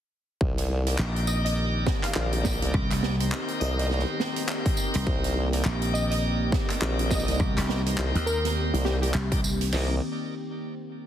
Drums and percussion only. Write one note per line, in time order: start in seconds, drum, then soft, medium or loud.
0.41 kick loud
0.58 closed hi-hat medium
0.87 closed hi-hat medium
0.98 clap loud
1.16 closed hi-hat medium
1.27 tambourine medium
1.46 closed hi-hat medium
1.86 kick loud
1.86 snare medium
2.03 clap soft
2.03 closed hi-hat medium
2.14 clap loud
2.33 closed hi-hat medium
2.44 kick loud
2.44 snare medium
2.44 tambourine medium
2.62 closed hi-hat medium
2.74 kick loud
2.91 clap soft
2.91 closed hi-hat medium
3.03 snare medium
3.20 closed hi-hat medium
3.32 clap loud
3.48 closed hi-hat soft
3.61 tambourine medium
3.79 snare soft
3.79 closed hi-hat medium
3.85 snare soft
3.91 snare soft
3.99 snare soft
4.20 snare medium
4.36 closed hi-hat medium
4.49 clap loud
4.66 kick loud
4.66 closed hi-hat medium
4.77 tambourine medium
4.94 closed hi-hat medium
5.07 kick loud
5.24 closed hi-hat medium
5.53 closed hi-hat medium
5.65 clap loud
5.82 closed hi-hat medium
5.95 tambourine medium
6.11 closed hi-hat medium
6.52 kick loud
6.52 snare medium
6.70 clap soft
6.70 closed hi-hat medium
6.82 clap loud
6.99 closed hi-hat medium
7.11 kick loud
7.11 snare soft
7.11 tambourine medium
7.20 tambourine soft
7.28 closed hi-hat medium
7.28 tambourine soft
7.34 tambourine soft
7.40 kick loud
7.58 clap soft
7.58 closed hi-hat medium
7.60 clap soft
7.63 clap soft
7.65 clap soft
7.67 clap soft
7.67 snare medium
7.86 closed hi-hat medium
7.98 clap loud
8.15 closed hi-hat medium
8.27 tambourine medium
8.45 snare soft
8.45 closed hi-hat medium
8.74 closed hi-hat medium
8.85 snare soft
9.03 closed hi-hat medium
9.14 clap loud
9.32 kick loud
9.32 closed hi-hat medium
9.44 tambourine medium
9.61 closed hi-hat medium
9.73 snare loud
9.73 crash medium